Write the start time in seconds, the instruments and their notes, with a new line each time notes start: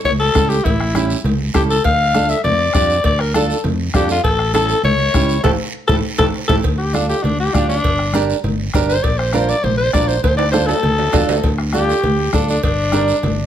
0.04 fingered electric bass C#2, alto saxophone C#5, cowbell, high conga, low conga, long guiro
0.20 alto saxophone A4
0.34 fingered electric bass C#2, nylon-string guitar C#4 E4 A4, bombo low, bombo rim, high conga, short guiro
0.49 alto saxophone G4, short guiro
0.64 fingered electric bass A1, alto saxophone E4, bombo low, cowbell, high conga, low conga, long guiro
0.80 bombo rim
0.95 nylon-string guitar C#4 E4 G4, bombo rim, high conga, short guiro
1.10 short guiro
1.24 fingered electric bass C#2, cowbell, high conga, low conga, long guiro
1.54 fingered electric bass C#2, nylon-string guitar C#4 E4 A4, alto saxophone G4, bombo low, bombo rim, high conga, short guiro
1.70 alto saxophone A4, short guiro
1.84 fingered electric bass D2, alto saxophone F5, bombo low, cowbell, high conga, long guiro
2.14 nylon-string guitar D4 F4 A4, bombo rim, high conga, short guiro
2.29 alto saxophone E5, short guiro
2.44 fingered electric bass F2, alto saxophone D5, cowbell, high conga, low conga, long guiro
2.73 fingered electric bass F2, nylon-string guitar D4 F4 G4, alto saxophone D5, bombo low, bombo rim, high conga, short guiro
2.90 short guiro
3.04 fingered electric bass D2, alto saxophone D5, bombo low, cowbell, high conga, long guiro
3.19 alto saxophone A#4, bombo rim
3.34 nylon-string guitar D4 F4 A4, alto saxophone A4, bombo rim, high conga, short guiro
3.50 short guiro
3.64 fingered electric bass F2, cowbell, high conga, low conga, long guiro
3.94 fingered electric bass F2, nylon-string guitar D4 F4 A4, alto saxophone G4, bombo low, bombo rim, high conga, low timbale, short guiro
4.09 alto saxophone F4, short guiro
4.24 fingered electric bass A1, alto saxophone A4, bombo low, cowbell, high conga, long guiro
4.39 bombo rim
4.54 nylon-string guitar C#4 E4 A4, alto saxophone A4, bombo rim, high conga, short guiro
4.69 short guiro
4.83 fingered electric bass C#2, alto saxophone C#5, cowbell, high conga, low conga, long guiro
5.14 fingered electric bass C#2, nylon-string guitar C#4 E4 G4, bombo low, bombo rim, high conga, short guiro
5.29 short guiro
5.44 fingered electric bass A1, nylon-string guitar E4 G4 A4, alto saxophone A4, bombo low, low conga, high timbale, long guiro
5.88 fingered electric bass A1, nylon-string guitar E4 G4 A4, alto saxophone A4, bombo low, low conga, high timbale, long guiro
6.18 fingered electric bass A1, nylon-string guitar E4 G4 A4, alto saxophone A4, bombo low, low conga, high timbale, long guiro
6.48 fingered electric bass A1, nylon-string guitar E4 G4 A4, alto saxophone A4, bombo low, low conga, high timbale
6.64 fingered electric bass D2, bombo low, cowbell, high conga, long guiro
6.78 alto saxophone G4
6.93 nylon-string guitar D4 F4 A4, alto saxophone D4, bombo rim, high conga, short guiro
7.09 alto saxophone G4, short guiro
7.23 fingered electric bass D2, alto saxophone D4, cowbell, high conga, low conga, long guiro
7.40 alto saxophone G4
7.54 fingered electric bass D2, alto saxophone D4, nylon-string guitar D4 F4 G4, bombo low, bombo rim, high conga, short guiro
7.69 alto saxophone D4, short guiro
7.84 fingered electric bass G1, bombo low, cowbell, high conga, long guiro
7.99 bombo rim
8.13 nylon-string guitar D4 G4 A#4, bombo rim, high conga, short guiro
8.30 short guiro
8.43 fingered electric bass G1, cowbell, high conga, low conga, long guiro
8.74 fingered electric bass G1, nylon-string guitar D4 G4 A#4, bombo low, bombo rim, high conga, low timbale, short guiro
8.89 alto saxophone C5, short guiro
9.03 fingered electric bass A#1, alto saxophone D5, bombo low, cowbell, high conga, long guiro
9.18 alto saxophone C5, bombo rim
9.33 nylon-string guitar D4 F4 A#4, alto saxophone C5, bombo rim, high conga, short guiro
9.49 alto saxophone D5, short guiro
9.63 fingered electric bass A#1, alto saxophone C5, cowbell, high conga, low conga, long guiro
9.77 alto saxophone C5
9.93 fingered electric bass A#1, nylon-string guitar D4 F4 A#4, alto saxophone D5, bombo low, bombo rim, high conga, low timbale, short guiro
10.08 alto saxophone C5, short guiro
10.23 fingered electric bass D2, alto saxophone C5, bombo low, cowbell, high conga, high timbale, long guiro
10.37 alto saxophone D5, high timbale
10.51 nylon-string guitar D4 F4 A4, alto saxophone C5, bombo rim, high conga, short guiro
10.66 alto saxophone A4, low timbale, short guiro
10.83 fingered electric bass D2, cowbell, high conga, low conga, long guiro
10.99 low timbale
11.13 fingered electric bass E2, nylon-string guitar D4 F4 A4, bombo low, bombo rim, high conga, low conga, low timbale, short guiro
11.28 fingered electric bass D2, low timbale, short guiro
11.43 fingered electric bass D2, bombo low, cowbell, high conga, long guiro
11.58 bombo rim
11.73 nylon-string guitar D4 F4 A4, alto saxophone G4, bombo rim, high conga, short guiro
11.89 short guiro
12.03 fingered electric bass D2, cowbell, high conga, low conga, long guiro
12.33 fingered electric bass D2, alto saxophone D4, nylon-string guitar D4 F4 A4, bombo low, bombo rim, high conga, short guiro
12.49 alto saxophone D4, short guiro
12.63 fingered electric bass G1, alto saxophone D4, bombo low, cowbell, high conga, long guiro
12.92 nylon-string guitar D4 G4 A#4, bombo rim, high conga, short guiro
13.08 short guiro
13.23 fingered electric bass G1, cowbell, high conga, low conga, long guiro